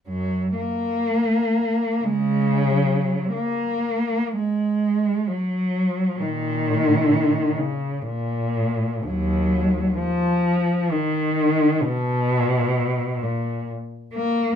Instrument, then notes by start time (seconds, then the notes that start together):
cello
0.08 F#2 F#3
0.56 A#3
2.03 C#3 G#3
2.70 F#3
3.34 A#3
4.37 G#3
5.28 F#3
6.20 A#2 D#3
7.57 C#3
8.02 A#2
9.07 D#2 F#3
9.99 F3
10.91 D#3
11.83 B2
13.22 A#2
14.14 A#3